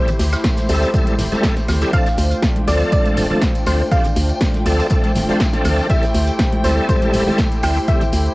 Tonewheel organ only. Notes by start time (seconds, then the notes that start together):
0.69 G3 A3 C4 E4 A4
0.94 G3 A3 C4 E4 A4
1.32 G3 A3 C4 E4 A4
1.81 G3 A3 C4 E4 G4
1.93 F3 A3 C4 D4 A4
2.67 F3 A3 C4 D4 A4
3.30 F3 A3 C4 D4 A4
3.67 F3 A3 C4 D4 C5
3.91 F3 A3 C4 D4 G4
4.66 F3 A3 C4 D4 A4
4.91 F3 A3 C4 D4 A4
5.29 F3 A3 C4 D4 C5
5.53 F3 A3 C4 D4 A4
5.90 G3 A3 C4 E4 A4
6.64 G3 A3 C4 E4 A4
7.27 G3 A3 C4 E4 A4
7.63 G3 A3 C4 E4 C5
7.88 G3 A3 C4 E4 G4